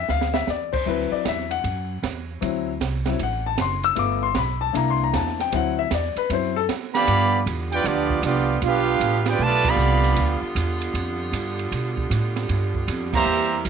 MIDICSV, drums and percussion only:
0, 0, Header, 1, 2, 480
1, 0, Start_track
1, 0, Tempo, 387347
1, 1071, Time_signature, 4, 2, 24, 8
1, 16970, End_track
2, 0, Start_track
2, 0, Title_t, "Drums"
2, 106, Note_on_c, 9, 38, 56
2, 230, Note_off_c, 9, 38, 0
2, 265, Note_on_c, 9, 38, 65
2, 388, Note_off_c, 9, 38, 0
2, 418, Note_on_c, 9, 38, 84
2, 542, Note_off_c, 9, 38, 0
2, 586, Note_on_c, 9, 38, 58
2, 587, Note_on_c, 9, 44, 58
2, 710, Note_off_c, 9, 38, 0
2, 711, Note_off_c, 9, 44, 0
2, 909, Note_on_c, 9, 49, 75
2, 911, Note_on_c, 9, 36, 75
2, 1033, Note_off_c, 9, 49, 0
2, 1035, Note_off_c, 9, 36, 0
2, 1075, Note_on_c, 9, 36, 22
2, 1199, Note_off_c, 9, 36, 0
2, 1552, Note_on_c, 9, 38, 75
2, 1553, Note_on_c, 9, 44, 57
2, 1553, Note_on_c, 9, 51, 68
2, 1554, Note_on_c, 9, 36, 24
2, 1676, Note_off_c, 9, 38, 0
2, 1677, Note_off_c, 9, 44, 0
2, 1677, Note_off_c, 9, 51, 0
2, 1678, Note_off_c, 9, 36, 0
2, 1869, Note_on_c, 9, 51, 49
2, 1993, Note_off_c, 9, 51, 0
2, 2034, Note_on_c, 9, 51, 67
2, 2035, Note_on_c, 9, 36, 28
2, 2158, Note_off_c, 9, 51, 0
2, 2159, Note_off_c, 9, 36, 0
2, 2518, Note_on_c, 9, 36, 25
2, 2522, Note_on_c, 9, 38, 71
2, 2523, Note_on_c, 9, 44, 60
2, 2523, Note_on_c, 9, 51, 77
2, 2642, Note_off_c, 9, 36, 0
2, 2645, Note_off_c, 9, 38, 0
2, 2647, Note_off_c, 9, 44, 0
2, 2647, Note_off_c, 9, 51, 0
2, 2998, Note_on_c, 9, 36, 27
2, 3001, Note_on_c, 9, 51, 70
2, 3122, Note_off_c, 9, 36, 0
2, 3125, Note_off_c, 9, 51, 0
2, 3478, Note_on_c, 9, 36, 18
2, 3483, Note_on_c, 9, 38, 73
2, 3485, Note_on_c, 9, 44, 54
2, 3485, Note_on_c, 9, 51, 76
2, 3602, Note_off_c, 9, 36, 0
2, 3607, Note_off_c, 9, 38, 0
2, 3608, Note_off_c, 9, 44, 0
2, 3608, Note_off_c, 9, 51, 0
2, 3787, Note_on_c, 9, 38, 62
2, 3788, Note_on_c, 9, 51, 52
2, 3911, Note_off_c, 9, 38, 0
2, 3912, Note_off_c, 9, 51, 0
2, 3958, Note_on_c, 9, 36, 24
2, 3958, Note_on_c, 9, 51, 69
2, 4082, Note_off_c, 9, 36, 0
2, 4082, Note_off_c, 9, 51, 0
2, 4433, Note_on_c, 9, 38, 76
2, 4434, Note_on_c, 9, 44, 58
2, 4434, Note_on_c, 9, 51, 75
2, 4436, Note_on_c, 9, 36, 29
2, 4557, Note_off_c, 9, 38, 0
2, 4558, Note_off_c, 9, 44, 0
2, 4558, Note_off_c, 9, 51, 0
2, 4560, Note_off_c, 9, 36, 0
2, 4751, Note_on_c, 9, 51, 47
2, 4875, Note_off_c, 9, 51, 0
2, 4911, Note_on_c, 9, 51, 71
2, 4915, Note_on_c, 9, 36, 20
2, 5035, Note_off_c, 9, 51, 0
2, 5039, Note_off_c, 9, 36, 0
2, 5386, Note_on_c, 9, 38, 78
2, 5387, Note_on_c, 9, 44, 53
2, 5387, Note_on_c, 9, 51, 70
2, 5396, Note_on_c, 9, 36, 27
2, 5510, Note_off_c, 9, 38, 0
2, 5511, Note_off_c, 9, 44, 0
2, 5511, Note_off_c, 9, 51, 0
2, 5520, Note_off_c, 9, 36, 0
2, 5881, Note_on_c, 9, 36, 28
2, 5887, Note_on_c, 9, 51, 68
2, 6005, Note_off_c, 9, 36, 0
2, 6011, Note_off_c, 9, 51, 0
2, 6362, Note_on_c, 9, 36, 24
2, 6363, Note_on_c, 9, 38, 79
2, 6364, Note_on_c, 9, 44, 52
2, 6364, Note_on_c, 9, 51, 73
2, 6486, Note_off_c, 9, 36, 0
2, 6487, Note_off_c, 9, 38, 0
2, 6488, Note_off_c, 9, 44, 0
2, 6488, Note_off_c, 9, 51, 0
2, 6530, Note_on_c, 9, 38, 32
2, 6654, Note_off_c, 9, 38, 0
2, 6687, Note_on_c, 9, 38, 46
2, 6694, Note_on_c, 9, 51, 48
2, 6811, Note_off_c, 9, 38, 0
2, 6818, Note_off_c, 9, 51, 0
2, 6844, Note_on_c, 9, 36, 27
2, 6845, Note_on_c, 9, 51, 69
2, 6968, Note_off_c, 9, 36, 0
2, 6969, Note_off_c, 9, 51, 0
2, 7322, Note_on_c, 9, 38, 78
2, 7324, Note_on_c, 9, 36, 26
2, 7324, Note_on_c, 9, 44, 64
2, 7324, Note_on_c, 9, 51, 74
2, 7446, Note_off_c, 9, 38, 0
2, 7447, Note_off_c, 9, 36, 0
2, 7448, Note_off_c, 9, 44, 0
2, 7448, Note_off_c, 9, 51, 0
2, 7639, Note_on_c, 9, 51, 52
2, 7763, Note_off_c, 9, 51, 0
2, 7805, Note_on_c, 9, 36, 25
2, 7807, Note_on_c, 9, 51, 78
2, 7929, Note_off_c, 9, 36, 0
2, 7931, Note_off_c, 9, 51, 0
2, 8287, Note_on_c, 9, 36, 27
2, 8290, Note_on_c, 9, 38, 77
2, 8291, Note_on_c, 9, 44, 55
2, 8291, Note_on_c, 9, 51, 81
2, 8411, Note_off_c, 9, 36, 0
2, 8414, Note_off_c, 9, 38, 0
2, 8415, Note_off_c, 9, 44, 0
2, 8415, Note_off_c, 9, 51, 0
2, 8608, Note_on_c, 9, 38, 58
2, 8609, Note_on_c, 9, 51, 52
2, 8732, Note_off_c, 9, 38, 0
2, 8733, Note_off_c, 9, 51, 0
2, 8768, Note_on_c, 9, 36, 20
2, 8768, Note_on_c, 9, 51, 84
2, 8892, Note_off_c, 9, 36, 0
2, 8892, Note_off_c, 9, 51, 0
2, 9248, Note_on_c, 9, 36, 26
2, 9255, Note_on_c, 9, 44, 56
2, 9255, Note_on_c, 9, 51, 81
2, 9372, Note_off_c, 9, 36, 0
2, 9379, Note_off_c, 9, 44, 0
2, 9379, Note_off_c, 9, 51, 0
2, 9572, Note_on_c, 9, 51, 52
2, 9696, Note_off_c, 9, 51, 0
2, 9726, Note_on_c, 9, 36, 29
2, 9734, Note_on_c, 9, 51, 81
2, 9850, Note_off_c, 9, 36, 0
2, 9858, Note_off_c, 9, 51, 0
2, 10039, Note_on_c, 9, 36, 71
2, 10163, Note_off_c, 9, 36, 0
2, 10198, Note_on_c, 9, 44, 68
2, 10198, Note_on_c, 9, 51, 83
2, 10202, Note_on_c, 9, 36, 28
2, 10322, Note_off_c, 9, 44, 0
2, 10322, Note_off_c, 9, 51, 0
2, 10326, Note_off_c, 9, 36, 0
2, 10679, Note_on_c, 9, 36, 28
2, 10679, Note_on_c, 9, 51, 76
2, 10803, Note_off_c, 9, 36, 0
2, 10803, Note_off_c, 9, 51, 0
2, 11158, Note_on_c, 9, 36, 26
2, 11163, Note_on_c, 9, 44, 63
2, 11163, Note_on_c, 9, 51, 80
2, 11282, Note_off_c, 9, 36, 0
2, 11287, Note_off_c, 9, 44, 0
2, 11287, Note_off_c, 9, 51, 0
2, 11471, Note_on_c, 9, 38, 68
2, 11472, Note_on_c, 9, 51, 86
2, 11595, Note_off_c, 9, 38, 0
2, 11596, Note_off_c, 9, 51, 0
2, 11635, Note_on_c, 9, 36, 31
2, 11759, Note_off_c, 9, 36, 0
2, 11952, Note_on_c, 9, 36, 98
2, 11953, Note_on_c, 9, 49, 92
2, 12076, Note_off_c, 9, 36, 0
2, 12077, Note_off_c, 9, 49, 0
2, 12120, Note_on_c, 9, 44, 64
2, 12244, Note_off_c, 9, 44, 0
2, 12441, Note_on_c, 9, 51, 54
2, 12565, Note_off_c, 9, 51, 0
2, 12595, Note_on_c, 9, 36, 28
2, 12595, Note_on_c, 9, 51, 84
2, 12719, Note_off_c, 9, 36, 0
2, 12719, Note_off_c, 9, 51, 0
2, 13077, Note_on_c, 9, 36, 21
2, 13086, Note_on_c, 9, 44, 66
2, 13086, Note_on_c, 9, 51, 91
2, 13201, Note_off_c, 9, 36, 0
2, 13210, Note_off_c, 9, 44, 0
2, 13210, Note_off_c, 9, 51, 0
2, 13402, Note_on_c, 9, 51, 60
2, 13526, Note_off_c, 9, 51, 0
2, 13558, Note_on_c, 9, 36, 22
2, 13566, Note_on_c, 9, 51, 79
2, 13682, Note_off_c, 9, 36, 0
2, 13690, Note_off_c, 9, 51, 0
2, 14037, Note_on_c, 9, 36, 27
2, 14045, Note_on_c, 9, 44, 64
2, 14045, Note_on_c, 9, 51, 88
2, 14161, Note_off_c, 9, 36, 0
2, 14169, Note_off_c, 9, 44, 0
2, 14169, Note_off_c, 9, 51, 0
2, 14363, Note_on_c, 9, 51, 55
2, 14487, Note_off_c, 9, 51, 0
2, 14518, Note_on_c, 9, 36, 22
2, 14526, Note_on_c, 9, 51, 77
2, 14642, Note_off_c, 9, 36, 0
2, 14650, Note_off_c, 9, 51, 0
2, 14837, Note_on_c, 9, 36, 62
2, 14961, Note_off_c, 9, 36, 0
2, 14999, Note_on_c, 9, 36, 30
2, 15009, Note_on_c, 9, 44, 67
2, 15009, Note_on_c, 9, 51, 84
2, 15123, Note_off_c, 9, 36, 0
2, 15132, Note_off_c, 9, 44, 0
2, 15132, Note_off_c, 9, 51, 0
2, 15320, Note_on_c, 9, 38, 50
2, 15322, Note_on_c, 9, 51, 54
2, 15444, Note_off_c, 9, 38, 0
2, 15445, Note_off_c, 9, 51, 0
2, 15477, Note_on_c, 9, 36, 22
2, 15479, Note_on_c, 9, 51, 81
2, 15601, Note_off_c, 9, 36, 0
2, 15603, Note_off_c, 9, 51, 0
2, 15794, Note_on_c, 9, 36, 60
2, 15918, Note_off_c, 9, 36, 0
2, 15958, Note_on_c, 9, 36, 21
2, 15962, Note_on_c, 9, 44, 62
2, 15962, Note_on_c, 9, 51, 88
2, 16082, Note_off_c, 9, 36, 0
2, 16086, Note_off_c, 9, 44, 0
2, 16086, Note_off_c, 9, 51, 0
2, 16275, Note_on_c, 9, 36, 90
2, 16277, Note_on_c, 9, 49, 87
2, 16398, Note_off_c, 9, 36, 0
2, 16401, Note_off_c, 9, 49, 0
2, 16916, Note_on_c, 9, 44, 56
2, 16916, Note_on_c, 9, 51, 82
2, 16918, Note_on_c, 9, 36, 25
2, 16970, Note_off_c, 9, 36, 0
2, 16970, Note_off_c, 9, 44, 0
2, 16970, Note_off_c, 9, 51, 0
2, 16970, End_track
0, 0, End_of_file